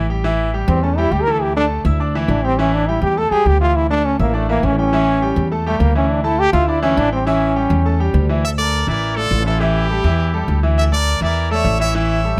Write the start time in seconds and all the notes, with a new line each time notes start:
Already playing: A1
0.10 G3 G4 G5
0.24 E3 E4 E5
0.54 G3 G4 G5
0.68 E2 C4
0.83 A3 C#4 A4 A5
0.97 G3 E4 G4 G5
1.11 D2 G4
1.23 A#4
1.27 E3 E4 E5
1.32 A4
1.42 G4
1.56 A3 D4 A4 A5
1.85 D2 E4 E5 E6
2.00 D4 D5 D6
2.15 E3 E4 E5
2.28 A1 D4
2.44 G3 C4 G4 G5
2.59 E3 C#4 E4 E5
2.73 D4
2.88 G3 E4 G4 G5
3.02 E2 G4
3.17 A3 A4 A5
3.31 E2 G3 G4 G#4 G5
3.46 D2 G4
3.61 E3 E4 F4 E5
3.76 E4
3.90 A3 D4 A4 A5
4.05 C#4
4.19 A1 A#3 E4 E5 E6
4.34 A3 D4 D5 D6
4.49 E3 A#3 E4 E5
4.63 A1 C#4
4.79 G3 C#4 G4 G5
4.93 E3 E4 E5
5.22 G3 G4 G5
5.36 E2
5.52 A3 A4 A5
5.66 G3 A3 G4 G5
5.80 D2 A#3
5.95 E3 C#4 E4 E5
6.11 D4
6.24 A3 E4 A4 A5
6.39 G4
6.53 D2 E4 F4 E5 E6
6.68 D4 E4 D5 D6
6.82 E3 C#4 E4 E5
6.97 A1 D4
7.12 G3 C4 G4 G5
7.26 E3 C#4 E4 E5
7.56 G3 G4 G5
7.70 E2
7.85 A3 A4 A5
7.99 G3 G4 G5
8.14 D2
8.29 E3 E4 E5
8.44 A4 E5
8.58 A3 A4 A#4 D5
8.87 A1 E3 E4 A#4 D5 E5
9.16 A3 F4 A4 D5
9.31 A1
9.46 E3 E4 F4 A4 E5
9.61 E3 E4 G4 E5
9.90 G3 G4 A4
10.04 E2 E3 E4 E5
10.34 G3 G4 A4
10.48 D2
10.63 E3 E4 E5
10.78 A4 E5
10.92 A3 A4 A#4 D5
11.21 E2 E3 E4 A#4 D5 E5
11.51 A3 A4 C#5 D5 E5
11.64 A1
11.80 E3 E4 C#5 E5
11.95 E3 E4 C#5 E5
12.24 G3 G4 A4